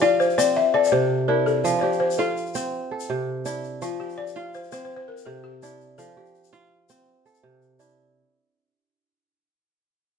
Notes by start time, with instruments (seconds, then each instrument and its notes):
Already playing: kora F3 D4 G4
0.02 kora F4, balafon D5
0.20 balafon C5, shaker
0.30 shaker
0.38 kora C4, balafon D5, shaker
0.56 balafon E5
0.74 kora A4, balafon D5
0.84 balafon D5, shaker
0.92 kora C3, balafon C5
1.28 kora D4 E4, balafon A#4
1.46 balafon A4, shaker
1.64 kora F3, shaker
1.79 balafon C5 D5
1.83 kora G4
1.92 shaker
2.00 balafon C5
2.11 shaker
2.18 kora F4, balafon A4
2.37 shaker
2.46 shaker
2.55 kora C4, shaker
2.91 kora A4
3.00 shaker
3.10 kora C3
3.46 kora D4 E4, shaker
3.64 shaker
3.82 kora F3, balafon F4, shaker
4.00 balafon G4, kora G4
4.09 shaker
4.18 balafon D5
4.27 shaker
4.36 kora F4
4.54 balafon C5, shaker
4.63 shaker
4.72 kora C4, balafon C5, shaker
4.85 balafon C5
4.96 balafon C5
5.08 balafon A#4
5.17 shaker
5.26 kora C3, balafon A4
5.44 balafon G4
5.63 kora D4 E4, shaker
5.81 shaker
5.98 kora F3, balafon A4, shaker
6.17 kora G4
6.26 shaker
6.35 shaker
6.44 shaker
6.53 kora F4, shaker
6.89 kora C4, shaker
7.26 kora A4, shaker
7.34 shaker
7.43 kora C3
7.62 shaker
7.79 kora D4 E4, shaker
7.89 shaker